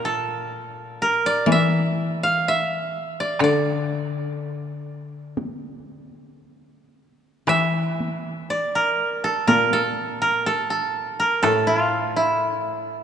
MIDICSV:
0, 0, Header, 1, 4, 480
1, 0, Start_track
1, 0, Tempo, 972447
1, 1679, Time_signature, 4, 2, 24, 8
1, 2163, Tempo, 1008403
1, 2643, Tempo, 1048951
1, 3603, Tempo, 1005025
1, 4563, Tempo, 960000
1, 6331, End_track
2, 0, Start_track
2, 0, Title_t, "Koto"
2, 0, Program_c, 0, 107
2, 0, Note_on_c, 0, 70, 89
2, 24, Note_on_c, 0, 69, 86
2, 54, Note_off_c, 0, 70, 0
2, 503, Note_on_c, 0, 70, 80
2, 533, Note_off_c, 0, 69, 0
2, 623, Note_on_c, 0, 74, 99
2, 749, Note_on_c, 0, 76, 100
2, 1103, Note_on_c, 0, 77, 92
2, 1132, Note_off_c, 0, 76, 0
2, 1226, Note_on_c, 0, 76, 100
2, 1255, Note_off_c, 0, 77, 0
2, 1410, Note_off_c, 0, 70, 0
2, 1413, Note_off_c, 0, 74, 0
2, 1580, Note_on_c, 0, 74, 84
2, 1695, Note_off_c, 0, 74, 0
2, 1697, Note_on_c, 0, 74, 82
2, 1963, Note_off_c, 0, 76, 0
2, 3112, Note_off_c, 0, 74, 0
2, 3604, Note_on_c, 0, 76, 97
2, 4087, Note_on_c, 0, 74, 87
2, 4207, Note_on_c, 0, 70, 81
2, 4317, Note_off_c, 0, 76, 0
2, 4440, Note_on_c, 0, 69, 84
2, 4468, Note_off_c, 0, 70, 0
2, 4552, Note_on_c, 0, 70, 96
2, 4581, Note_off_c, 0, 69, 0
2, 4678, Note_on_c, 0, 69, 88
2, 4708, Note_off_c, 0, 70, 0
2, 4865, Note_off_c, 0, 74, 0
2, 4922, Note_on_c, 0, 70, 79
2, 4952, Note_off_c, 0, 69, 0
2, 5046, Note_on_c, 0, 69, 89
2, 5076, Note_off_c, 0, 70, 0
2, 5163, Note_off_c, 0, 69, 0
2, 5165, Note_on_c, 0, 69, 78
2, 5412, Note_on_c, 0, 70, 83
2, 5442, Note_off_c, 0, 69, 0
2, 5527, Note_on_c, 0, 69, 95
2, 5557, Note_off_c, 0, 70, 0
2, 5648, Note_on_c, 0, 64, 83
2, 5703, Note_off_c, 0, 64, 0
2, 5703, Note_on_c, 0, 65, 83
2, 5896, Note_on_c, 0, 64, 72
2, 5926, Note_off_c, 0, 65, 0
2, 6331, Note_off_c, 0, 64, 0
2, 6331, Note_off_c, 0, 69, 0
2, 6331, End_track
3, 0, Start_track
3, 0, Title_t, "Koto"
3, 0, Program_c, 1, 107
3, 0, Note_on_c, 1, 46, 68
3, 717, Note_off_c, 1, 46, 0
3, 722, Note_on_c, 1, 52, 62
3, 1680, Note_on_c, 1, 50, 59
3, 2166, Note_off_c, 1, 52, 0
3, 3123, Note_off_c, 1, 50, 0
3, 3595, Note_on_c, 1, 52, 57
3, 4551, Note_on_c, 1, 46, 59
3, 5043, Note_off_c, 1, 52, 0
3, 5525, Note_off_c, 1, 46, 0
3, 5531, Note_on_c, 1, 45, 66
3, 6331, Note_off_c, 1, 45, 0
3, 6331, End_track
4, 0, Start_track
4, 0, Title_t, "Taiko and cinematic ensemble drums"
4, 724, Note_on_c, 9, 48, 67
4, 774, Note_off_c, 9, 48, 0
4, 1678, Note_on_c, 9, 37, 67
4, 1727, Note_off_c, 9, 37, 0
4, 2634, Note_on_c, 9, 48, 60
4, 2680, Note_off_c, 9, 48, 0
4, 3599, Note_on_c, 9, 37, 64
4, 3647, Note_off_c, 9, 37, 0
4, 3849, Note_on_c, 9, 48, 41
4, 3897, Note_off_c, 9, 48, 0
4, 4554, Note_on_c, 9, 48, 61
4, 4604, Note_off_c, 9, 48, 0
4, 5532, Note_on_c, 9, 37, 61
4, 5582, Note_off_c, 9, 37, 0
4, 6331, End_track
0, 0, End_of_file